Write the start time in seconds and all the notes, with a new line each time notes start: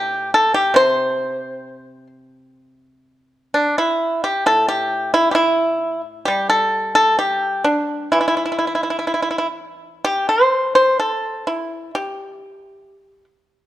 Already playing: A2 G4
0.34 A4
0.54 G4
0.74 C3 C5
3.54 D4
3.78 E4
4.24 G4
4.46 A2 A4
4.68 G4
5.14 E4
5.31 E4 G4
6.25 G3 G4
6.50 A4
6.95 A4
7.19 G4
7.64 D4
8.12 E3 E4
8.21 E4
8.28 E4
8.46 E4
8.52 E4
8.59 E4
8.67 E4
8.75 E4
8.83 E4
8.90 E4
8.99 E4
9.07 E4
9.14 E4
9.22 E4
9.31 E4
9.38 E4
10.05 G4
10.29 C5
10.75 C5
11.00 A4
11.47 E4
11.95 G4